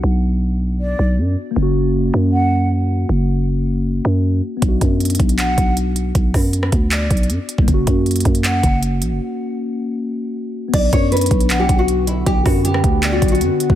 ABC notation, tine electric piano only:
X:1
M:4/4
L:1/8
Q:1/4=157
K:Bm
V:1 name="Tine electric piano"
[B,DF]8 | [^A,CF]8- | [^A,CF]8 | [B,DF]8- |
[B,DF]8 | [^A,CF]8- | [^A,CF]8 | B,8- |
B,8 |]